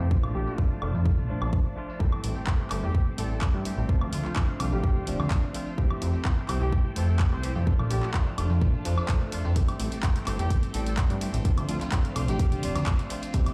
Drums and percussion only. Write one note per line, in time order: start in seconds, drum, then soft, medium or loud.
0.11 kick loud
0.11 tambourine medium
0.24 tambourine soft
0.24 high woodblock medium
0.47 tambourine medium
0.58 kick loud
0.58 tambourine medium
0.71 tambourine soft
0.82 high woodblock medium
0.95 tambourine medium
1.05 kick loud
1.05 tambourine medium
1.18 tambourine soft
1.41 tambourine medium
1.41 high woodblock medium
1.53 kick loud
1.53 tambourine medium
1.65 tambourine soft
1.90 tambourine medium
2.00 kick loud
2.00 tambourine medium
2.12 tambourine soft
2.12 high woodblock medium
2.24 open hi-hat loud
2.36 tambourine medium
2.47 kick loud
2.47 clap loud
2.71 clap soft
2.71 open hi-hat medium
2.71 high woodblock medium
2.83 tambourine medium
2.94 kick loud
2.94 tambourine medium
3.07 tambourine soft
3.18 open hi-hat loud
3.31 tambourine medium
3.41 kick loud
3.41 clap loud
3.54 tambourine soft
3.65 open hi-hat medium
3.78 tambourine medium
3.89 kick loud
4.01 tambourine soft
4.01 high woodblock medium
4.13 open hi-hat medium
4.25 clap soft
4.25 tambourine medium
4.36 kick loud
4.36 clap loud
4.49 tambourine soft
4.60 open hi-hat medium
4.60 high woodblock medium
4.72 tambourine medium
4.83 kick loud
4.83 tambourine medium
4.96 tambourine soft
5.07 open hi-hat medium
5.20 tambourine medium
5.20 high woodblock medium
5.31 kick loud
5.31 clap loud
5.31 open hi-hat medium
5.43 tambourine soft
5.54 open hi-hat medium
5.67 tambourine medium
5.78 kick loud
5.91 tambourine soft
5.91 high woodblock medium
6.02 open hi-hat medium
6.14 tambourine medium
6.25 kick loud
6.25 clap loud
6.25 tambourine medium
6.38 tambourine soft
6.49 clap soft
6.49 open hi-hat medium
6.49 high woodblock medium
6.61 tambourine medium
6.72 kick loud
6.72 tambourine medium
6.85 tambourine soft
6.96 open hi-hat medium
7.09 tambourine medium
7.19 kick loud
7.19 clap loud
7.32 tambourine soft
7.43 open hi-hat medium
7.56 tambourine medium
7.67 kick loud
7.67 tambourine medium
7.79 tambourine soft
7.79 high woodblock medium
7.91 open hi-hat medium
8.03 clap soft
8.03 tambourine medium
8.14 kick loud
8.14 clap loud
8.14 tambourine medium
8.27 tambourine soft
8.38 open hi-hat medium
8.38 high woodblock medium
8.50 tambourine medium
8.61 kick loud
8.61 tambourine medium
8.74 tambourine soft
8.85 open hi-hat loud
8.98 tambourine medium
8.98 high woodblock medium
9.09 kick loud
9.09 clap loud
9.09 open hi-hat medium
9.22 tambourine soft
9.32 open hi-hat medium
9.45 tambourine medium
9.56 kick loud
9.56 closed hi-hat medium
9.68 closed hi-hat soft
9.68 tambourine soft
9.68 high woodblock medium
9.80 open hi-hat loud
9.92 closed hi-hat soft
9.92 tambourine medium
10.03 kick loud
10.03 clap loud
10.03 closed hi-hat medium
10.03 tambourine medium
10.16 closed hi-hat soft
10.16 tambourine soft
10.27 clap soft
10.27 open hi-hat loud
10.27 high woodblock medium
10.39 closed hi-hat soft
10.39 tambourine medium
10.50 kick loud
10.50 closed hi-hat medium
10.50 tambourine medium
10.63 closed hi-hat soft
10.63 tambourine soft
10.74 open hi-hat loud
10.86 closed hi-hat soft
10.86 tambourine medium
10.97 kick loud
10.97 clap loud
10.97 closed hi-hat medium
11.10 closed hi-hat soft
11.10 tambourine soft
11.21 open hi-hat loud
11.34 closed hi-hat soft
11.34 tambourine medium
11.45 kick loud
11.45 closed hi-hat medium
11.58 closed hi-hat soft
11.58 tambourine soft
11.58 high woodblock medium
11.69 open hi-hat loud
11.81 clap soft
11.81 closed hi-hat soft
11.81 tambourine medium
11.92 kick loud
11.92 clap loud
11.92 closed hi-hat medium
11.92 tambourine medium
12.05 closed hi-hat soft
12.05 tambourine soft
12.16 open hi-hat loud
12.16 high woodblock medium
12.28 closed hi-hat soft
12.28 tambourine medium
12.39 kick loud
12.39 closed hi-hat medium
12.52 closed hi-hat soft
12.52 tambourine soft
12.63 open hi-hat loud
12.75 closed hi-hat soft
12.75 tambourine medium
12.75 high woodblock medium
12.86 kick loud
12.86 clap loud
12.86 open hi-hat medium
12.99 closed hi-hat soft
12.99 tambourine soft
13.10 open hi-hat loud
13.22 closed hi-hat soft
13.22 tambourine medium
13.33 kick loud
13.33 closed hi-hat medium
13.33 tambourine medium
13.46 closed hi-hat soft
13.46 tambourine soft
13.46 high woodblock medium